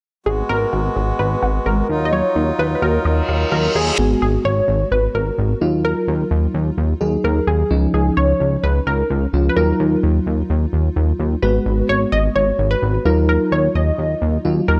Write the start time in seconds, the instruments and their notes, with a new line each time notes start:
0.26 analog synth bass G#1, harmonium G#3 B3 F#4, synth arpeggio sound G#3, analog polysynth G#4
0.49 analog synth bass G#1, synth arpeggio sound B3, analog polysynth A#4
0.73 analog synth bass G#1, synth arpeggio sound F#4
0.96 analog synth bass G#1, synth arpeggio sound G#4
1.19 analog synth bass G#1, analog polysynth B4, synth arpeggio sound B4
1.43 analog synth bass G#1, synth arpeggio sound F#5
1.66 analog synth bass G#1, synth arpeggio sound G#3, analog polysynth A#4
1.89 analog synth bass D#2, harmonium F#3 D#4 F4, synth arpeggio sound D#4
2.05 analog polysynth D#5
2.12 synth arpeggio sound F#3, analog polysynth C#5
2.36 analog synth bass D#2, synth arpeggio sound D#4
2.59 analog synth bass D#2, synth arpeggio sound F4, analog polysynth B4
2.75 analog polysynth B4
2.82 analog synth bass D#2, synth arpeggio sound F#4, analog polysynth A#4
3.05 analog synth bass D#2, synth arpeggio sound D#5, reverse cymbal
3.29 analog synth bass D#2, synth arpeggio sound F5
3.52 analog synth bass D#2, synth arpeggio sound F#3, analog polysynth A#4
3.75 analog synth bass D#2, synth arpeggio sound D#4, analog polysynth G#4
3.98 analog synth bass G#1, fm electric piano G#3 B3 F#4
4.22 analog synth bass G#1, analog polysynth G#4
4.45 analog synth bass G#1, analog polysynth C#5
4.68 analog synth bass G#1
4.91 analog synth bass G#1, analog polysynth B4
5.15 analog synth bass G#1, analog polysynth A#4
5.38 analog synth bass G#1
5.61 analog synth bass D#2, fm electric piano F#3 D#4 F4
5.85 analog polysynth A#4
6.08 analog synth bass D#2
6.31 analog synth bass D#2
6.54 analog synth bass D#2
6.78 analog synth bass D#2
7.01 analog synth bass D#2, fm electric piano F#3 D#4 G#4
7.24 analog synth bass D#2, analog polysynth A#4
7.47 analog synth bass D#2, analog polysynth G#4
7.71 analog synth bass C#2, fm electric piano F3 C#4 D#4
7.94 analog synth bass C#2, analog polysynth G#4
8.17 analog synth bass C#2, analog polysynth C#5
8.40 analog synth bass C#2
8.63 analog synth bass C#2, analog polysynth B4
8.87 analog synth bass C#2, analog polysynth A#4
9.10 analog synth bass C#2
9.33 analog synth bass C#2, fm electric piano F3 C#4 F4
9.49 analog polysynth B4
9.56 analog synth bass D#2, fm electric piano F#3 D#4 F4, analog polysynth A#4
9.80 analog synth bass D#2
10.03 analog synth bass D#2
10.26 analog synth bass D#2
10.50 analog synth bass D#2
10.73 analog synth bass D#2
10.96 analog synth bass D#2
11.19 analog synth bass D#2
11.42 analog synth bass G#1, fm electric piano G#3 B3 F#4, analog polysynth B4
11.66 analog synth bass G#1
11.89 analog synth bass G#1, analog polysynth C#5
12.12 analog synth bass G#1, analog polysynth D#5
12.36 analog synth bass G#1, analog polysynth C#5
12.59 analog synth bass G#1
12.71 analog polysynth B4
12.82 analog synth bass G#1
13.05 analog synth bass D#2, fm electric piano F#3 D#4 F4, analog polysynth A#4
13.29 analog polysynth A#4
13.52 analog synth bass D#2, analog polysynth C#5
13.75 analog synth bass D#2, analog polysynth D#5
13.98 analog synth bass D#2
14.22 analog synth bass D#2
14.45 analog synth bass D#2, fm electric piano F#3 D#4 F4
14.68 analog synth bass D#2, analog polysynth A#4